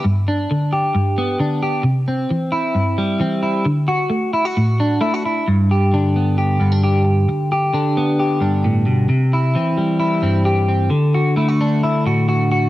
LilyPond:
\new Staff \with { instrumentName = "Clean electric guitar" } { \time 4/4 \key g \major \tempo 4 = 132 << { r8 d'4 g'4 b8 d'8 g'8 | r8 c'4 e'4 g8 c'8 e'8 | r8 fis'4 e'16 fis'8. d'8 e'16 fis'16 e'8 | r8 g'8 d'8 b8 g'8 b16 d'16 g'4 |
r8 g'8 d'8 b8 g'8 d'4. | r8 e'8 c'8 g8 e'8 c'8 g'8 c'8 | r8 fis'8 e'16 fis'16 d'8 e'8 fis'8 fis'8 fis'8 | } \\ { g,4 d4 g,4 d4 | c4 e4 g,4 e4 | d4 a4 a,4 a4 | g,4 d4. g,4. |
r4 d4. g,8 a,8 b,8 | c4 e4. g,4. | d4 a4. a,4. | } >> }